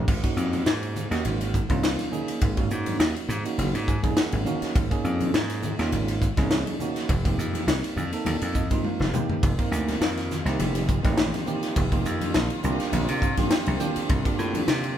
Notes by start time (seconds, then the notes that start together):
0.08 G#1, kick, crash
0.22 A#3 C#4 D#4 F#4, kick, ride
0.37 F2, hi-hat pedal
0.53 ride, high conga
0.66 G#2, snare, ride
0.83 ride
0.96 hi-hat pedal, low conga
1.10 D#2 A#3 C#4 D#4 F#4, snare, ride
1.25 G#1, ride, high conga, low conga
1.41 ride
1.54 kick, hi-hat pedal
1.69 C2 A#3 C#4 D#4 F4, kick, ride, high conga
1.83 snare, ride
1.99 snare, ride, high conga
2.11 A#3 C#4 D#4 G#4, hi-hat pedal, low conga
2.28 ride
2.41 G#1, kick, ride
2.56 A#3 C#4 D#4 F#4, kick, ride
2.70 G#2, hi-hat pedal
2.86 ride, high conga
2.99 D#2, snare, ride
3.16 ride
3.29 G#2, hi-hat pedal, low conga
3.44 A#3 C#4 D#4 F#4, ride
3.58 F#1, ride, high conga, low conga
3.74 G#2, ride
3.88 G#5, kick, hi-hat pedal
4.03 A#3 C#4 D#4 G#4, kick, ride, high conga
4.17 F#5, snare, ride
4.32 G#1, ride, high conga
4.45 A#3 C#4 D#4 F#4 F5, hi-hat pedal, low conga
4.62 muted slap bass stroke, snare, ride
4.75 G#1, kick, ride
4.90 A#3 C#4 D#4 G#4, kick, ride
5.04 F2, hi-hat pedal
5.20 ride, high conga
5.34 G#2, snare, ride
5.50 snare, ride
5.63 hi-hat pedal, low conga
5.78 D#2 A#3 C#4 D#4 F4, snare, ride
5.92 G#1, ride, high conga, low conga
6.08 ride
6.22 kick, hi-hat pedal
6.37 C2 A#3 C#4 D#4 G#4, kick, snare, ride, high conga
6.51 snare, ride
6.66 ride, high conga
6.80 A#3 C#4 D#4 F#4, hi-hat pedal, low conga
6.96 snare, ride
7.09 F1, kick, ride
7.25 A#3 C4 D#4 G4, kick, ride
7.38 F2, hi-hat pedal, low conga
7.54 ride, high conga
7.67 C2, snare, ride
7.84 snare, ride
7.96 F2, hi-hat pedal, low conga
8.12 A#3 C4 D#4 A4, ride
8.25 D#2, ride, high conga, low conga
8.42 F2, ride
8.55 D#5, kick, hi-hat pedal
8.70 A#3 C4 D#4 F4, kick, ride, high conga
8.84 F5, high tom
9.00 F1, snare, high conga
9.13 A#3 C4 D#4 G4 G5, hi-hat pedal, mid tom, high conga, low conga
9.29 muted slap bass stroke, floor tom
9.42 F1 D#3 G3 A#3 F4, kick, ride
9.58 A#3 C4 D#4 A#4, kick, ride
9.71 D2, hi-hat pedal
9.88 snare, ride, high conga
10.01 F2, snare, ride
10.17 snare, ride
10.30 snare, hi-hat pedal, low conga
10.45 C2 A#3 C4 D#4 G4, snare, ride
10.59 F1, ride, high conga, low conga
10.75 ride
10.88 kick, hi-hat pedal
11.03 A1 A#3 C4 D#4 G4, kick, snare, ride, high conga
11.17 snare, ride
11.34 snare, ride, high conga
11.46 A#3 C4 D#4 G4, hi-hat pedal, low conga
11.63 snare, ride
11.76 F1, kick, ride
11.91 A#3 C4 D#4 G4, kick, ride
12.05 F2, hi-hat pedal
12.21 ride, high conga
12.34 A#1, snare, ride
12.50 ride
12.63 C2 D3 A#3 C4 D4 F4 G4, hi-hat pedal, low conga
12.80 snare, ride
12.92 A#1, ride, high conga, low conga
13.08 C3, ride
13.22 F5, kick, hi-hat pedal
13.37 A#3 D4 F4 G4, kick, snare, ride, high conga
13.51 G5, snare, ride
13.66 C2, ride, high conga
13.79 A#3 D4 F4 G4 G5, hi-hat pedal, low conga
13.96 muted slap bass stroke, ride
14.09 C2, kick, ride
14.24 A#3 D4 F4 G4, kick, ride
14.39 A2, hi-hat pedal
14.54 ride, high conga
14.68 C3, snare, ride
14.84 ride